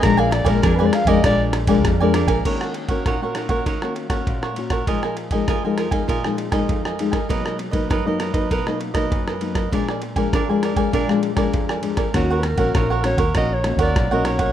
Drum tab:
CC |----------------|x---------------|----------------|----------------|
RD |x-xxx-xxx-xxx-xx|x-xxx-xxx-xxx-xx|x-xxx-xxx-xxx-xx|x-xxx-xxx-xxx-xx|
SD |r-r-r-r-r-r-r-r-|-r--r-r--r-r-r-r|-r--r-r--r-r-r-r|-r--r-r--r-r-r-r|
BD |o--oo--oo--oo--o|o--oo--oo--oo--o|o--oo--oo--oo--o|o--oo--oo--oo--o|

CC |----------------|----------------|
RD |x-xxx-xxx-xxx-xx|x-xxx-xxx-xxx-xx|
SD |-r--r-r--r-r-r-r|r-r-r-r-r-r-r-r-|
BD |o--oo--oo--oo--o|o--oo--oo--oo--o|